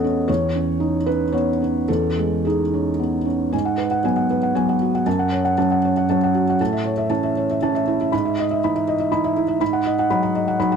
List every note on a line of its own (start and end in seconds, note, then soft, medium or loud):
0.00 0.24 E2 soft
0.00 0.31 A3 soft
0.00 0.31 B3 soft
0.00 0.04 C#4 soft
0.00 0.31 F#4 soft
0.00 0.28 A4 medium
0.00 0.30 D#5 medium
0.00 0.31 F#5 medium
0.04 0.29 C#4 soft
0.28 1.84 E2 soft
0.28 1.06 C#5 medium
0.55 0.96 C#4 soft
0.80 1.22 D#4 soft
1.06 1.50 C#4 soft
1.06 1.33 B4 medium
1.32 1.60 B3 soft
1.32 1.88 C#5 medium
1.62 2.06 C#4 soft
1.88 3.50 E2 soft
1.88 2.44 A4 medium
2.18 2.62 G#3 soft
2.45 2.89 D#4 soft
2.45 2.99 G#4 soft
2.74 3.16 C#4 soft
2.99 3.27 B3 soft
3.25 3.53 C#4 soft
3.53 4.03 G#2 soft
3.53 3.74 G#5 soft
3.65 3.86 F#5 soft
3.78 3.99 B4 soft
3.91 4.12 F#5 soft
4.04 4.51 F#3 soft
4.04 4.51 B3 soft
4.04 4.25 G#5 soft
4.16 4.37 F#5 soft
4.30 4.51 B4 soft
4.43 4.63 F#5 soft
4.55 5.02 F#3 soft
4.55 5.02 B3 soft
4.55 4.76 G#5 soft
4.69 4.89 F#5 soft
4.81 5.01 F#4 soft
4.95 5.07 F#5 soft
5.06 5.56 F#2 soft
5.06 5.27 A5 soft
5.19 5.40 F#5 soft
5.32 5.52 C#5 soft
5.45 5.65 F#5 soft
5.58 6.05 F#3 soft
5.58 6.06 C#4 soft
5.58 5.78 A5 soft
5.71 5.92 F#5 soft
5.85 6.05 C#5 soft
5.97 6.17 F#5 soft
6.10 6.56 F#3 soft
6.10 6.56 C#4 soft
6.10 6.30 A5 soft
6.24 6.43 F#5 soft
6.35 6.55 F#4 soft
6.50 6.61 F#5 soft
6.60 7.09 A2 soft
6.60 6.80 A5 soft
6.73 6.93 E5 soft
6.85 7.05 C#5 soft
6.97 7.18 E5 soft
7.10 7.57 E3 soft
7.10 7.58 C#4 soft
7.10 7.30 A5 soft
7.23 7.44 E5 soft
7.37 7.57 C#5 soft
7.51 7.70 E5 soft
7.62 8.09 E3 soft
7.62 8.09 C#4 soft
7.62 7.82 A5 soft
7.75 7.95 E5 soft
7.88 8.08 E4 soft
8.01 8.13 E5 soft
8.12 8.61 G#2 medium
8.12 8.33 B5 soft
8.25 8.45 E5 soft
8.39 8.58 D#5 soft
8.51 8.70 E5 soft
8.64 9.08 E3 soft
8.64 9.08 D#4 soft
8.64 8.83 B5 soft
8.76 8.95 E5 soft
8.88 9.07 D#5 soft
9.00 9.19 E5 soft
9.12 9.57 E3 soft
9.12 9.57 D#4 soft
9.12 9.31 B5 soft
9.24 9.44 E5 soft
9.37 9.56 E4 soft
9.48 9.61 E5 soft
9.60 10.08 G#2 medium
9.60 9.81 B5 medium
9.73 9.93 F#5 soft
9.86 10.05 D#5 soft
9.99 10.18 F#5 soft
10.10 10.56 F#3 soft
10.10 10.56 D#4 soft
10.10 10.30 B5 soft
10.23 10.42 F#5 soft
10.35 10.55 D#5 soft
10.48 10.67 F#5 soft
10.60 10.76 F#3 soft
10.60 10.76 D#4 soft
10.60 10.76 B5 soft
10.72 10.76 F#5 soft